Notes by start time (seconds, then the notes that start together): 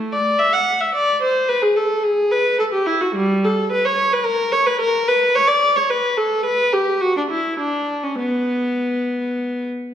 Already playing: A3
0.13 D5
0.39 E5
0.53 F#5
0.81 E5
0.95 D5
1.22 C5
1.49 B4
1.62 G#4
1.77 A4
2.04 G#4
2.32 B4
2.59 A4
2.72 G4
2.86 E4
3.01 F#4
3.15 G3
3.45 A4
3.71 B4
3.85 C#5
4.13 B4
4.25 A#4
4.52 C#5
4.67 B4
4.81 A#4
5.08 B4
5.35 C#5
5.47 D5
5.76 C#5
5.90 B4
6.17 A4
6.45 B4
6.73 G4
7.01 F#4
7.17 D4
7.30 E4
7.59 D4
8.04 C#4
8.19 B3